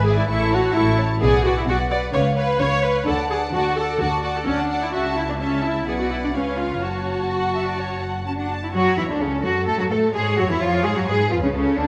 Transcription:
Already playing: double bass section G#1, cello section G#2
0.05 viola section G#4, violin section D5 E5 G#5
0.18 viola section E4
0.29 double bass section A1, cello section A2, viola section E4, violin section A4 E5 C#6
0.53 viola section F#4, violin section C#5 A5
0.75 double bass section A1, cello section A2, viola section E4, violin section A4 E5 C#6
0.98 violin section C#5 A5
1.21 double bass section B1, cello section B2, viola section G#4, violin section B4 D5 F#5
1.44 viola section F#4, violin section B4 D5 F#5
1.58 viola section E4
1.67 double bass section B1, cello section B2, viola section F#4, violin section B4 D5 F#5
1.90 violin section B4 D5 F#5, viola section D5
2.13 double bass section C#2, cello section C#3, violin section B4 C#5 F5, viola section C#5
2.36 violin section B4 C#5 F5, viola section B4
2.60 double bass section C#2, cello section C#3, violin section B4 C#5 F5, viola section C#5
2.84 viola section B4, violin section B4 C#5 F5
3.07 double bass section D2, cello section D3, viola section A4, violin section D5 F#5 A5
3.30 viola section G#4, violin section D5 F#5 A5
3.53 double bass section D2, cello section D3, viola section F#4, violin section D5 F#5 A5
3.77 viola section A4, violin section D5 F#5 A5
4.00 double bass section D2, cello section D3, viola section F#4, violin section D5 F#5 A5
4.24 viola section F#4, violin section D5 F#5 A5
4.36 viola section A4
4.46 double bass section D2, cello section D3, viola section C#4, violin section D5 F#5 A5
4.59 viola section D4
4.69 violin section D5 F#5 A5
4.83 viola section E4
4.93 double bass section C#2, cello section C#3, viola section F#4, violin section E5 A5
5.17 viola section E4
5.29 viola section D4
5.40 viola section C#4, violin section E5 A5
5.64 viola section E4
5.87 double bass section B1, cello section B2, viola section G#4, violin section B4 D5 F#5
6.00 viola section F#4
6.11 viola section E4
6.23 viola section D4
6.35 double bass section C#2, cello section C#3, viola section C#4, violin section B4 C#5 F5
6.59 viola section F4
6.82 double bass section F#1, cello section F#2, viola section F#4, violin section C#5 A5
7.31 violin section F#5
7.55 violin section E5
7.67 violin section D5
7.79 violin section C#5
8.02 violin section F#5
8.26 cello section C#4, violin section A5
8.39 cello section D4, violin section F#5
8.51 violin section A5
8.64 cello section E4
8.74 double bass section F#2, viola section F#3, violin section F#4 C#5, cello section F#4
8.97 double bass section E2, viola section E3, violin section E4, cello section E4
9.08 double bass section D2, viola section D3, violin section D4, cello section D4
9.20 double bass section C#2, viola section C#3, violin section C#4 A4, cello section C#4
9.43 double bass section F#2, viola section F#3, violin section F#4, cello section F#4
9.67 double bass section A2, viola section A3, violin section A4, cello section A4
9.78 double bass section F#2, viola section F#3, violin section F#4, cello section F#4
9.91 double bass section A2, viola section A3, cello section A4, violin section A4
10.13 double bass section G#2, viola section G#3, violin section G#4 C#5, cello section G#4
10.37 double bass section F#2, viola section F#3, violin section F#4, cello section F#4
10.50 double bass section E2, viola section E3, violin section E4, cello section E4
10.61 double bass section F2, viola section F3, cello section F4, violin section F4
10.84 double bass section G#2, viola section G#3, cello section G#4, violin section G#4
10.96 double bass section F#2, viola section F#3, violin section F#4, cello section F#4
11.07 double bass section G#2, viola section G#3, violin section G#4 B4, cello section G#4
11.31 double bass section F2, viola section F3, violin section F4, cello section F4
11.43 double bass section C#2, viola section C#3, violin section C#4, cello section C#4
11.54 double bass section C#2, viola section C#3, violin section C#4 A4, cello section C#4
11.77 double bass section D2, viola section D3, violin section D4, cello section D4

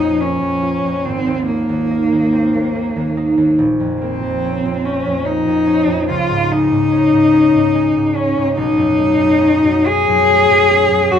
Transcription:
Already playing: harp A#1 A#3 C#4 F4, cello D#4
0.00 harp F2
0.20 harp A#3, cello C#4
0.41 harp F2
0.62 harp F4
0.84 harp F2
1.05 harp G#1, cello C4
1.27 harp D#2
1.47 cello A#3, harp A#3
1.69 harp D#2
1.91 harp D#4
2.12 harp D#2
2.33 harp C4
2.54 harp D#2
2.75 harp A#3
2.96 harp D#2
3.17 harp D#4
3.38 harp D#2
3.59 harp A#1
3.80 harp F2
4.01 harp A#3, cello C4
4.23 harp F2
4.44 harp C#4
4.66 harp F2
4.85 harp C4, cello C#4
5.07 harp F2
5.25 harp A#3, cello D#4
5.47 harp F2
5.67 harp C#4
5.87 harp F2
6.08 harp C#2, cello F4
6.30 harp G#2
6.51 harp G#3, cello D#4
6.71 harp G#2
6.92 harp C#4
7.12 harp G#2
7.33 harp C#4
7.54 harp G#2
7.75 harp G#3
7.96 harp G#2
8.16 cello C#4, harp C#4
8.37 harp G#2
8.55 harp B1, cello D#4
8.77 harp F#2
8.97 harp A3
9.18 harp F#2
9.41 harp C#4
9.64 harp F#2
9.87 harp C#4, cello G#4
10.09 harp F#2
10.30 harp A3
10.50 harp F#2
10.70 harp C#4
10.91 harp F#2
11.11 harp F#2, cello F#4

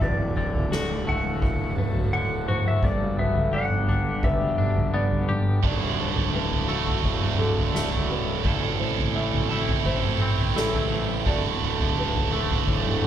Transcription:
Already playing: ambient pad A3
0.01 fingered electric bass D1, clean electric guitar D2, ambient pad D3 F#3 F#4 A4, felt piano B4, electric slide guitar D5, kick, floor tom
0.37 clean electric guitar D3, electric slide guitar D5, kick
0.54 floor tom
0.72 clean electric guitar F#4, felt piano A4, snare
1.07 clean electric guitar A3, electric slide guitar F#5, floor tom
1.42 clean electric guitar A2, kick, floor tom
1.77 clean electric guitar A3, felt piano B4, mid tom
1.95 floor tom
2.13 clean electric guitar D3, electric slide guitar F#5
2.48 clean electric guitar F#4, felt piano C5, mid tom
2.68 electric slide guitar E5
2.83 fingered electric bass G1, clean electric guitar G2, ambient pad B2 G3 G4, electric slide guitar D5, kick, floor tom
3.18 clean electric guitar B3, felt piano B4, electric slide guitar E5, floor tom
3.35 floor tom
3.53 clean electric guitar G4, felt piano D5, electric slide guitar F#5
3.71 mid tom
3.88 clean electric guitar D4, floor tom
4.23 clean electric guitar G3, felt piano B4, electric slide guitar E5, kick, floor tom
4.58 clean electric guitar D4, mid tom
4.76 floor tom, mid tom
4.94 clean electric guitar B3, felt piano D5, electric slide guitar D5
5.11 floor tom
5.28 clean electric guitar G4, mid tom
5.63 fingered electric bass D1, distorted electric guitar D2 A2 D3 A3 F#4, clean electric guitar D2, ambient pad F#4 A4 D5 A5, felt piano D5, kick, floor tom, crash
6.00 fingered electric bass D1
6.16 floor tom
6.34 clean electric guitar A2, felt piano B4
6.51 floor tom
6.68 distorted electric guitar D2 A2 D3 A3 F#4, clean electric guitar A3
6.86 floor tom
7.04 fingered electric bass D1, clean electric guitar A2, kick
7.22 mid tom
7.39 clean electric guitar D3, felt piano A4
7.57 floor tom
7.75 clean electric guitar A3, snare
7.92 floor tom
8.09 clean electric guitar A2, felt piano B4
8.43 fingered electric bass A1, distorted electric guitar A2 E3 A3 C4 E4 A4, clean electric guitar A2, ambient pad C4 E5 B5, kick, floor tom
8.79 fingered electric bass A1, felt piano C5
8.98 floor tom
9.15 clean electric guitar A3, felt piano E5
9.33 floor tom
9.49 distorted electric guitar A2 E3 A3 C4 E4 A4, clean electric guitar E4
9.68 floor tom
9.85 fingered electric bass A1, clean electric guitar A3, felt piano C5, kick
10.04 mid tom
10.22 clean electric guitar C4
10.39 floor tom
10.56 clean electric guitar E4, felt piano A4, snare
10.74 floor tom
10.92 clean electric guitar A3
11.25 fingered electric bass D1, distorted electric guitar D2 A2 D3 A3 F#4, clean electric guitar D2, ambient pad D5 F#5 D6, felt piano D5, kick, floor tom
11.62 fingered electric bass D1
11.80 floor tom
11.98 clean electric guitar A2, felt piano B4
12.15 floor tom
12.31 distorted electric guitar D2 A2 D3 A3 F#4, clean electric guitar A3
12.51 floor tom
12.68 fingered electric bass D1, clean electric guitar A2, kick
12.85 mid tom
13.03 clean electric guitar D3, felt piano A4

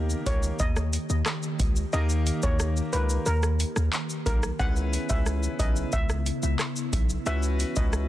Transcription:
Already playing: 808-style bass D#2, ambient pad D#3 A#3 G4, grand piano A#3 D#4 G4 A#4
0.10 shaker
0.26 808-style bass C#2, grand piano A#3 D#4 G4 A#4, steel pan C#5, kick, closed hi-hat, shaker
0.43 shaker
0.59 808-style bass D#2, steel pan D#5, kick, shaker
0.76 cross-stick, shaker
0.93 closed hi-hat, shaker
1.10 808-style bass D#2, shaker
1.26 cross-stick, clap, shaker
1.43 shaker
1.59 808-style bass C#2, kick, closed hi-hat, shaker
1.76 shaker
1.93 808-style bass D#2, grand piano A#3 D#4 G4 A#4, steel pan D#5, shaker
2.10 shaker
2.27 closed hi-hat, shaker
2.43 808-style bass D#2, grand piano A#3 D#4 G4 A#4, steel pan C#5, kick, shaker
2.60 cross-stick, shaker
2.77 shaker
2.93 808-style bass C#2, grand piano A#3 D#4 G4 A#4, steel pan B4, closed hi-hat, shaker
3.10 shaker
3.26 808-style bass D#2, steel pan A#4, shaker
3.43 cross-stick, shaker
3.60 closed hi-hat, shaker
3.76 808-style bass D#2, cross-stick, shaker
3.93 clap, shaker
4.10 shaker
4.26 808-style bass B1, grand piano A#3 D#4 G4 A#4, steel pan A#4, kick, closed hi-hat, shaker
4.43 cross-stick, shaker
4.59 808-style bass C#2, ambient pad C#3 B3 E4, grand piano C#4 E4 G#4 B4, steel pan F#5, kick, shaker
4.76 shaker
4.93 closed hi-hat, shaker
5.09 808-style bass C#2, grand piano C#4 E4 G#4 B4, steel pan E5, kick, shaker
5.26 cross-stick, shaker
5.43 shaker
5.59 808-style bass B1, grand piano C#4 E4 G#4 B4, steel pan D#5, kick, closed hi-hat, shaker
5.76 shaker
5.93 808-style bass C#2, steel pan E5, kick, shaker
6.09 cross-stick, shaker
6.26 closed hi-hat, shaker
6.43 808-style bass C#2, shaker
6.59 cross-stick, clap, shaker
6.76 shaker
6.93 808-style bass B1, kick, closed hi-hat, shaker
7.09 shaker
7.26 808-style bass C#2, ambient pad E3 F#4, grand piano C#4 E4 F#4 B4, steel pan E5, shaker
7.43 shaker
7.60 closed hi-hat, shaker
7.76 808-style bass C#2, grand piano C#4 E4 F#4 B4, steel pan D#5, kick, shaker
7.93 cross-stick, shaker

